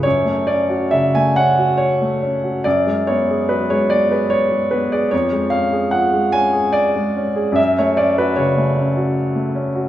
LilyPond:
<<
  \new Staff \with { instrumentName = "Grand piano" } { \time 3/4 \key fis \minor \tempo 4 = 73 cis''8 d''8 e''16 gis''16 fis''8 cis''4 | d''8 cis''8 b'16 cis''16 d''16 b'16 cis''8 b'16 d''16 | cis''8 eis''8 fis''8 gis''8 d''4 | e''16 cis''16 d''16 b'16 cis''4 r4 | }
  \new Staff \with { instrumentName = "Grand piano" } { \time 3/4 \key fis \minor fis,16 a16 cis'16 fis'16 cis16 a16 cis'16 fis'8 a16 cis'16 fis'16 | fis,16 gis16 b16 gis'16 fis16 gis16 b16 gis'8 gis16 b16 gis'16 | eis,16 gis16 cis'16 gis'16 eis16 gis16 cis'16 gis'8 gis16 cis'16 gis'16 | fis,16 a16 cis'16 fis'16 cis16 a16 cis'16 fis'8 a16 cis'16 fis'16 | }
>>